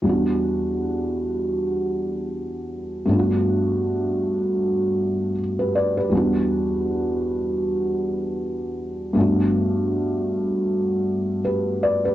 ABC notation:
X:1
M:4/4
L:1/16
Q:"Swing 16ths" 1/4=79
K:Em
V:1 name="Felt piano"
z16 | z12 z [GB] [Bd] [GB]- | [GB] z12 z3 | z12 [GB]2 [Bd] [GB] |]
V:2 name="Felt piano"
[E,,G,B,DF]16 | [G,,A,B,D=F^F]12 z4 | [E,,G,B,DF]16 | [G,,A,B,DF]12 z4 |]